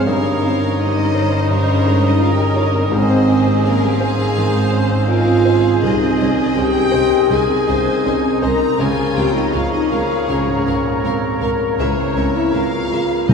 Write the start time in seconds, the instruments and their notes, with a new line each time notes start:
Already playing: clarinet C#5
0.06 double bass section G1, cello section G2, grand piano G2, bassoon D#3, french horn section C#4, violin section A#4 C#5 F5, viola section A#4, oboe D#5, flute section A#5
0.24 grand piano C#4
0.43 french horn section C4, grand piano D#4, violin section C5
0.61 grand piano C#4, french horn section C#4, violin section C#5
0.80 grand piano D#4, french horn section D#4, viola section G4, violin section C5 D#5
0.98 grand piano C#4
1.15 viola section C5, grand piano C#5
1.33 grand piano C#4
1.50 grand piano G2, french horn section C#4, violin section A#4 C#5
1.69 grand piano G3
1.86 grand piano G#3
2.04 grand piano C#4, violin section D#5
2.09 french horn section D#4
2.21 grand piano D#4, french horn section F4, viola section A#4, violin section A#4 F5
2.33 french horn section G4, violin section G5
2.38 grand piano C#4, french horn section G#4, violin section G#5
2.49 french horn section G4, violin section G5
2.56 french horn section F4, grand piano C#5, violin section F5
2.64 french horn section D#4, violin section D#5
2.74 french horn section C4, grand piano C#4, violin section C5
2.84 french horn section C#4, violin section C#5
2.92 double bass section G#1, grand piano G#2, cello section G#2, french horn section C4, viola section G#4, violin section C5 D#5, clarinet C5, flute section G#5
3.11 grand piano C4
3.29 grand piano C#4, viola section G4, violin section G#4
3.47 grand piano C4
3.64 french horn section A#3, grand piano C#4, viola section G#4, violin section A#4 F5
3.82 french horn section G3, grand piano C4, violin section G4
4.00 french horn section G#3, violin section G#4, grand piano C5
4.18 grand piano C4
4.37 grand piano D#3, viola section C5
4.55 grand piano C4
4.73 grand piano C#4
4.91 grand piano C4
5.08 grand piano C#4, french horn section F4, violin section G#4 D#5 F5, viola section A#4
5.27 grand piano C4
5.45 viola section G#4, grand piano C5
5.65 grand piano C4
5.82 grand piano C2, double bass section C2, cello section C2, bassoon D#3, french horn section D#4, violin section C5 D#5, oboe D#5
6.02 grand piano C4
6.20 cello section C2, double bass section C2, grand piano C#4, violin section C5 D#5
6.39 grand piano C4
6.56 cello section C2, double bass section C2, grand piano C#4, french horn section G4, violin section C5 D#5 G5
6.74 grand piano C4
6.92 cello section C2, double bass section C2, grand piano C5, violin section C5 D#5
7.10 grand piano C4
7.30 cello section C2, grand piano C2, double bass section C2, french horn section G#4, viola section G#4, violin section C5 D#5 G#5
7.49 grand piano C3
7.67 cello section C2, double bass section C2, grand piano C#3, violin section C5 D#5, viola section C5
7.86 grand piano C4
8.04 cello section C2, double bass section C2, grand piano C#4, viola section D#4, violin section C5 D#5
8.24 grand piano C4
8.42 cello section C2, double bass section C2, french horn section A#4, violin section C5 D#5 A#5, grand piano C5
8.61 grand piano C4
8.79 grand piano C#2, cello section C#2, double bass section C#2, bassoon F3, viola section F4, french horn section G#4, violin section A#4 F5 G#5, oboe C#5, flute section A#5
8.98 grand piano A#3
9.16 cello section C#2, double bass section C#2, grand piano C4, french horn section G4, violin section A#4 F5 G5
9.34 grand piano A#3, french horn section D#4, violin section D#5
9.53 cello section C#2, double bass section C#2, grand piano C4, french horn section F4, viola section G#4, violin section A#4 F5, clarinet A#4
9.73 grand piano A#3, french horn section D#4, violin section D#5
9.90 cello section C#2, double bass section C#2, french horn section F4, grand piano A#4, violin section A#4 F5
10.11 grand piano A#3
10.28 cello section C#2, double bass section C#2, grand piano C#2, french horn section C#4, violin section A#4 C#5 F5
10.47 grand piano G#2
10.66 cello section C#2, double bass section C#2, grand piano A#2, violin section A#4 F5
10.84 grand piano A#3
11.02 cello section C#2, double bass section C#2, grand piano C4, viola section A#4, violin section A#4 F5
11.22 grand piano A#3
11.40 cello section C#2, double bass section C#2, grand piano A#4, violin section A#4 F5
11.60 grand piano A#3
11.77 cello section C#2, double bass section C#2, grand piano C#2, bassoon E3, french horn section G#3, violin section G#4 A#4 E5, viola section C#5
11.97 grand piano A#3, french horn section C4, violin section C5
12.16 cello section C#2, double bass section C#2, grand piano C4, french horn section C#4, violin section A#4 C#5 E5
12.34 grand piano A#3, french horn section E4, violin section E5
12.53 cello section C#2, double bass section C#2, grand piano C4, french horn section F4, violin section A#4 E5 F5, viola section A#4
12.72 grand piano A#3
12.91 cello section C#2, double bass section C#2, viola section G#4, grand piano A#4, violin section A#4 E5
13.11 grand piano A#3
13.28 grand piano D#2, cello section D#2, double bass section D#2, timpani D#3, bassoon D#3, french horn section D#4, clarinet C5, violin section C5 D#5 G#5, oboe D#5, flute section G#5